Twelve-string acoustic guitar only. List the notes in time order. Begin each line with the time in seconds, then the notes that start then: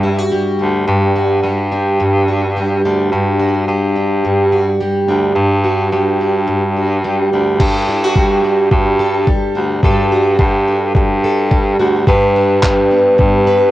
Already playing: G2 G3 D4
0.03 E4
0.19 F#4
0.32 G3
0.59 D4
0.88 G2
1.16 F#4
1.43 G3
1.72 D4
2.00 G2
2.28 F#4
2.56 G3
2.85 D4
3.12 G2
3.39 F#4
3.68 G3
3.96 D4
4.25 G2
4.52 F#4
4.81 G3
5.08 D4
5.36 G2
5.64 F#4
5.93 G3
6.21 D4
6.48 G2
6.77 F#4
7.04 G3
7.33 D4
7.61 G2 A4
7.88 E4
8.04 F#4
8.16 G3
8.44 D4
8.71 G2
8.99 A4
9.28 G3
9.55 F#4
9.84 G2 A4
10.12 F#4
10.39 G3
10.68 D4
10.96 G2
11.24 A4
11.52 G3
11.79 F#4
12.08 G2 B4
12.36 D4
12.63 G3
12.91 B3
13.18 G2
13.47 B4